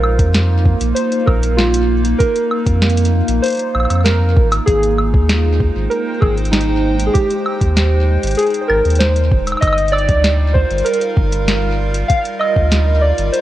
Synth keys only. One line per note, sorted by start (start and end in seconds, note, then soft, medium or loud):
0.00 0.92 A#4 medium
0.95 1.27 C5 medium
1.26 1.58 A#4 medium
1.57 2.01 F4 medium
2.19 3.47 A#4 loud
3.42 4.01 C5 loud
4.04 4.48 A#4 loud
4.66 5.94 G#4 loud
5.90 6.22 A#4 loud
6.21 6.35 G#4 medium
6.52 6.95 D#4 loud
7.06 7.14 G#4 medium
7.13 8.34 G4 loud
8.37 8.63 G#4 loud
8.61 8.69 C5 medium
8.68 9.01 A#4 loud
8.99 9.43 C5 loud
9.61 9.93 D#5 loud
9.92 10.56 D5 loud
10.54 10.86 C5 loud
10.85 11.74 A#4 loud
12.08 12.22 F5 loud
12.39 13.04 D#5 loud
13.01 13.24 D5 loud
13.25 13.33 D5 medium
13.32 13.41 C5 medium